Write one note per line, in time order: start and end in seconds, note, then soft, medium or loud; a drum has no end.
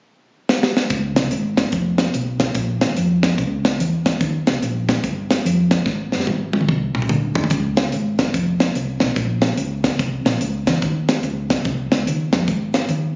0.49 snare medium
0.63 snare medium
0.77 snare medium
0.90 1.13 C#2 medium
0.90 kick loud
0.90 closed hi-hat medium
1.16 1.30 C2 medium
1.16 snare medium
1.16 closed hi-hat medium
1.31 1.67 G#1 medium
1.31 closed hi-hat medium
1.57 kick medium
1.57 snare medium
1.57 closed hi-hat medium
1.72 2.08 F1 medium
1.72 kick medium
1.72 closed hi-hat medium
1.98 snare medium
1.98 closed hi-hat medium
2.14 2.50 B1 medium
2.14 closed hi-hat medium
2.40 kick medium
2.40 snare medium
2.40 closed hi-hat medium
2.55 2.78 A#1 medium
2.55 kick loud
2.55 closed hi-hat medium
2.81 2.95 G#1 medium
2.81 snare medium
2.81 closed hi-hat medium
2.97 3.40 F2 medium
2.97 closed hi-hat medium
3.23 kick medium
3.23 snare medium
3.23 closed hi-hat medium
3.38 3.73 C#2 medium
3.38 kick medium
3.38 closed hi-hat medium
3.65 snare loud
3.65 closed hi-hat medium
3.80 4.15 E2 loud
3.80 closed hi-hat medium
4.06 kick medium
4.06 snare medium
4.06 closed hi-hat medium
4.21 4.43 D#2 loud
4.21 kick loud
4.21 closed hi-hat medium
4.47 4.60 C2 medium
4.47 snare medium
4.47 closed hi-hat medium
4.62 4.97 A#1 medium
4.62 closed hi-hat medium
4.89 kick medium
4.89 snare medium
4.89 closed hi-hat medium
5.04 5.38 G1 medium
5.04 kick medium
5.04 closed hi-hat medium
5.31 snare medium
5.31 closed hi-hat medium
5.45 5.80 F2 medium
5.45 closed hi-hat medium
5.71 kick medium
5.71 snare medium
5.71 closed hi-hat medium
5.86 6.08 G#1 medium
5.86 kick loud
5.86 snare soft
6.12 6.25 F#1 medium
6.12 snare medium
6.20 snare soft
6.27 6.63 G#1 medium
6.27 high tom medium
6.53 high tom medium
6.61 mid tom medium
6.68 7.04 C2 medium
6.68 kick medium
6.68 mid tom medium
6.95 mid tom medium
7.02 mid tom medium
7.09 7.45 D2 medium
7.09 mid tom medium
7.35 floor tom medium
7.44 floor tom medium
7.50 7.86 C#2 medium
7.50 kick medium
7.50 closed hi-hat medium
7.77 snare loud
7.77 closed hi-hat medium
7.92 8.28 G#1 medium
7.92 closed hi-hat medium
8.19 kick medium
8.19 snare medium
8.19 closed hi-hat medium
8.34 8.69 F1 medium
8.34 kick medium
8.34 closed hi-hat medium
8.60 snare loud
8.60 closed hi-hat medium
8.75 8.98 C2 medium
8.75 closed hi-hat medium
9.00 9.15 B1 medium
9.00 kick medium
9.00 snare medium
9.00 closed hi-hat medium
9.16 9.52 A#1 loud
9.16 kick medium
9.16 closed hi-hat medium
9.42 snare medium
9.42 closed hi-hat medium
9.57 9.93 C#2 medium
9.57 closed hi-hat medium
9.84 kick medium
9.84 snare medium
9.84 closed hi-hat medium
9.99 10.22 C2 medium
9.99 kick medium
9.99 closed hi-hat medium
10.25 10.38 A#1 loud
10.25 snare medium
10.25 closed hi-hat medium
10.40 10.63 C#2 medium
10.40 closed hi-hat medium
10.67 10.80 E2 medium
10.67 kick medium
10.67 snare medium
10.67 closed hi-hat medium
10.82 11.17 D#2 medium
10.82 kick loud
10.82 closed hi-hat medium
11.09 snare medium
11.09 closed hi-hat medium
11.23 11.59 C#2 medium
11.23 closed hi-hat medium
11.50 kick medium
11.50 snare medium
11.50 closed hi-hat medium
11.65 11.88 C2 medium
11.65 kick loud
11.65 closed hi-hat medium
11.92 12.05 C#2 medium
11.92 snare medium
11.92 closed hi-hat medium
12.07 12.29 D#2 medium
12.07 closed hi-hat medium
12.33 12.46 F2 medium
12.33 kick medium
12.33 snare medium
12.33 closed hi-hat medium
12.48 12.83 G#1 medium
12.48 kick loud
12.48 closed hi-hat medium
12.74 snare medium
12.74 closed hi-hat medium
12.89 13.16 D#2 medium
12.89 closed hi-hat medium